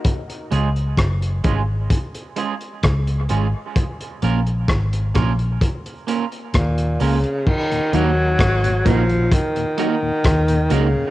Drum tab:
CC |----------------|----------------|x---------------|
HH |xxxxxxx-xxxxxxx-|xxxxxxxxxxxxxxox|-xx-xxxxxxx-xxx-|
SD |----r-------r---|----r-r-----r---|----r-------r---|
BD |o---o-o-o---o---|o---o-o-o---o---|o---o-o-o---o---|